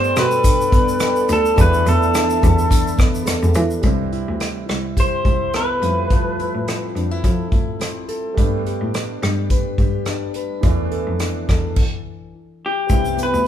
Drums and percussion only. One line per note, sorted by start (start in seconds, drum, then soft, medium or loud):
0.04 shaker soft
0.16 cross-stick loud
0.16 closed hi-hat medium
0.16 shaker medium
0.31 shaker medium
0.44 kick loud
0.44 closed hi-hat medium
0.44 shaker medium
0.61 shaker medium
0.72 kick loud
0.72 closed hi-hat medium
0.72 shaker soft
0.88 shaker medium
1.00 cross-stick medium
1.00 closed hi-hat medium
1.00 shaker medium
1.16 shaker medium
1.29 closed hi-hat medium
1.29 shaker medium
1.46 shaker medium
1.58 kick loud
1.58 closed hi-hat medium
1.58 shaker medium
1.73 shaker medium
1.87 closed hi-hat medium
1.87 shaker medium
2.02 shaker soft
2.14 cross-stick loud
2.14 closed hi-hat medium
2.14 shaker medium
2.30 shaker soft
2.43 kick medium
2.43 closed hi-hat soft
2.43 shaker medium
2.59 shaker medium
2.71 kick medium
2.71 closed hi-hat medium
2.71 shaker medium
2.87 shaker medium
2.99 kick loud
2.99 cross-stick medium
2.99 closed hi-hat soft
2.99 shaker soft
3.15 shaker medium
3.27 cross-stick loud
3.27 closed hi-hat medium
3.27 shaker medium
3.43 shaker soft
3.54 closed hi-hat medium
3.54 shaker medium
3.71 shaker medium
3.83 kick medium
3.83 closed hi-hat medium
4.13 closed hi-hat soft
4.40 cross-stick medium
4.40 closed hi-hat medium
4.69 cross-stick medium
4.69 closed hi-hat soft
4.97 kick medium
4.97 closed hi-hat medium
5.25 kick medium
5.25 closed hi-hat soft
5.54 cross-stick medium
5.54 closed hi-hat medium
5.82 closed hi-hat soft
6.10 kick loud
6.10 closed hi-hat medium
6.40 closed hi-hat soft
6.68 cross-stick medium
6.68 closed hi-hat medium
6.96 closed hi-hat soft
7.24 kick medium
7.24 closed hi-hat medium
7.52 kick medium
7.52 closed hi-hat soft
7.81 cross-stick medium
7.81 closed hi-hat medium
8.09 closed hi-hat soft
8.38 kick medium
8.38 closed hi-hat medium
8.66 closed hi-hat soft
8.94 cross-stick medium
8.94 closed hi-hat medium
9.23 cross-stick medium
9.23 closed hi-hat soft
9.50 kick medium
9.50 closed hi-hat medium
9.78 kick medium
9.78 closed hi-hat soft
10.05 cross-stick medium
10.05 closed hi-hat medium
10.34 closed hi-hat soft
10.63 kick loud
10.63 closed hi-hat medium
10.92 closed hi-hat soft
11.20 cross-stick medium
11.20 closed hi-hat medium
11.49 kick medium
11.49 cross-stick medium
11.49 closed hi-hat soft
11.76 kick medium
11.76 crash medium
12.89 kick medium
12.89 closed hi-hat medium
12.89 shaker medium
13.05 shaker medium
13.19 closed hi-hat soft
13.19 shaker medium
13.34 shaker soft